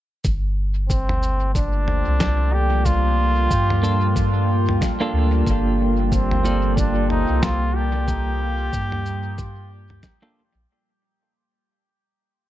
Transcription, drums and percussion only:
0.24 kick loud
0.24 cabasa soft
0.90 kick loud
0.90 cabasa soft
1.09 mid tom medium
1.23 cabasa soft
1.55 kick loud
1.55 cabasa medium
1.88 mid tom medium
2.20 kick medium
2.20 snare medium
2.20 cabasa soft
2.86 kick loud
2.86 cabasa medium
3.51 kick loud
3.51 cabasa soft
3.70 mid tom medium
3.84 cabasa soft
4.16 kick loud
4.16 cabasa medium
4.69 mid tom medium
4.81 kick loud
4.81 snare medium
4.81 cabasa soft
5.47 kick loud
5.47 cabasa soft
6.12 kick loud
6.12 cabasa soft
6.31 mid tom medium
6.45 cabasa soft
6.77 kick loud
6.77 cabasa soft
7.10 mid tom medium
7.42 kick loud
7.42 snare medium
7.42 cabasa soft
8.08 kick loud
8.08 cabasa soft
8.73 kick loud
8.73 cabasa soft
8.92 mid tom medium
9.06 cabasa soft
9.38 kick loud
9.38 cabasa soft
9.90 mid tom medium
10.03 kick loud
10.03 snare medium
10.03 cabasa soft

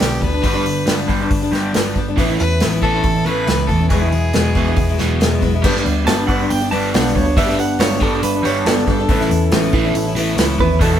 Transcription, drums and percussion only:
0.00 snare loud
0.00 open hi-hat medium
0.22 kick medium
0.22 open hi-hat soft
0.44 kick loud
0.44 open hi-hat medium
0.66 open hi-hat medium
0.87 snare loud
0.87 open hi-hat medium
1.09 kick medium
1.09 open hi-hat soft
1.31 kick loud
1.31 open hi-hat medium
1.53 snare soft
1.53 open hi-hat soft
1.74 snare loud
1.74 open hi-hat medium
1.96 kick medium
1.96 open hi-hat soft
2.18 kick loud
2.18 open hi-hat medium
2.40 open hi-hat soft
2.60 snare loud
2.60 open hi-hat medium
2.82 kick medium
2.82 open hi-hat soft
3.04 kick loud
3.04 open hi-hat medium
3.26 open hi-hat soft
3.47 snare loud
3.47 open hi-hat medium
3.69 kick medium
3.69 open hi-hat soft
3.90 kick loud
3.90 open hi-hat medium
4.12 open hi-hat soft
4.33 snare loud
4.33 open hi-hat medium
4.55 kick medium
4.55 open hi-hat soft
4.76 kick loud
4.76 open hi-hat medium
4.99 snare soft
4.99 open hi-hat soft
5.21 snare loud
5.21 open hi-hat medium
5.42 kick medium
5.42 open hi-hat soft
5.64 kick loud
5.64 crash loud
5.77 snare soft
5.86 open hi-hat soft
6.07 snare loud
6.07 open hi-hat medium
6.29 kick medium
6.29 open hi-hat soft
6.50 open hi-hat medium
6.72 open hi-hat medium
6.94 snare loud
6.94 open hi-hat medium
7.06 snare soft
7.15 kick medium
7.15 open hi-hat soft
7.37 kick loud
7.37 open hi-hat medium
7.49 snare soft
7.59 open hi-hat medium
7.80 snare loud
7.80 open hi-hat medium
8.01 kick medium
8.01 open hi-hat medium
8.23 open hi-hat medium
8.45 open hi-hat medium
8.66 snare loud
8.66 open hi-hat medium
8.87 kick medium
8.87 open hi-hat soft
9.09 kick loud
9.09 open hi-hat medium
9.21 snare soft
9.31 open hi-hat medium
9.52 snare loud
9.52 open hi-hat medium
9.73 kick medium
9.73 open hi-hat soft
9.95 open hi-hat medium
10.16 open hi-hat medium
10.38 snare loud
10.38 open hi-hat medium
10.59 kick medium
10.59 open hi-hat soft
10.81 kick loud
10.81 open hi-hat medium

